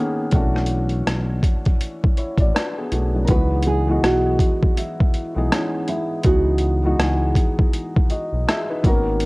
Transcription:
Already playing: D#3 A#3 B3 C#4 G#4
0.31 B1 E3 A3 C#4 D4 F#4, kick, closed hi-hat
0.56 cross-stick
0.66 closed hi-hat
0.89 closed hi-hat
1.07 B1, cross-stick, closed hi-hat
1.43 kick, closed hi-hat
1.65 kick, closed hi-hat
1.81 closed hi-hat
2.04 kick
2.17 E4 C#5, closed hi-hat
2.38 A1 F#4 D5, kick, closed hi-hat
2.55 D4 B4, cross-stick, closed hi-hat
2.78 B3 G#4
2.92 B1 A3 F#4, closed hi-hat
3.15 F#3 D4
3.25 E3 G#3 B3 A#4, closed hi-hat
3.29 C#2 D#4 F#4 B4, kick
3.63 closed hi-hat
3.67 G#4
3.87 E3 G#3 B3 F#4 D#5
4.03 B1 F#4, cross-stick, closed hi-hat
4.39 kick, closed hi-hat
4.63 kick
4.77 E4, closed hi-hat
5.00 kick
5.14 closed hi-hat
5.35 B1 E3 G#3 B3 D#4 G#4
5.52 C#4, cross-stick, closed hi-hat
5.88 E4, closed hi-hat
6.23 C#2 E3 G#3 B3 D#4 F#4 G#4, kick, closed hi-hat
6.59 closed hi-hat
6.83 E3 G#3 B3 D#4 F#4
6.99 C#2 G#4, cross-stick, closed hi-hat
7.35 kick, closed hi-hat
7.59 kick
7.74 closed hi-hat
7.97 kick
8.10 F#4 D#5, closed hi-hat
8.33 B1
8.48 G#4 E5, cross-stick, closed hi-hat
8.70 D#4 B4
8.83 G#1 D#3 A#3 B3 C#4 F#4, kick, closed hi-hat
8.87 A#4
9.20 closed hi-hat

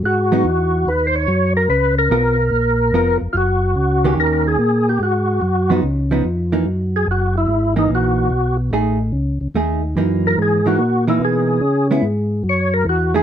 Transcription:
0.03 G#2 F#4
0.32 F#3 B3 D#4
0.45 E2
0.87 D#2 B4
1.07 C5
1.16 C#5
1.28 F#2
1.57 A#4
1.69 C#2 B4
1.98 A#4
2.10 B1 B3 F4 A#4
2.51 A#1
2.93 F1 B3 F4 A#4
3.21 F1
3.33 F#1 F4
3.37 F#4
3.75 C#2
4.04 D#3 A#3 C#4 G4
4.17 D#2 A#4
4.47 G#4
4.58 A#2
4.89 G4
5.00 G#2 F#4
5.42 F#2
5.70 F3 B3 D#4
5.83 C#2
6.11 F3 B3 D#4
6.24 F2
6.52 E3 A#3 D#4
6.65 F#2
6.96 G#4
7.07 F#1
7.11 F#4
7.38 E4
7.48 G#1
7.76 E3 A#3 D#4
7.89 A#1
7.95 F#4
8.30 B1
8.71 A1 A3 D#4 G#4
9.12 C#2
9.41 C#2
9.54 D#2 A3 D#4 G#4
9.96 F#2 E3 A#3 D#4
10.27 A#4
10.38 G#2
10.42 G#4
10.66 E3 A#3 D#4 F#4
10.79 A#2
11.08 E3 A#3 D#4 E4
11.20 B2
11.25 G#4
11.61 C#3
11.91 G#3 B3 E4
12.02 G#2
12.44 F#2
12.49 C#5
12.74 A#4
12.85 E2
12.89 F#4
13.14 A3 D#4 G#4

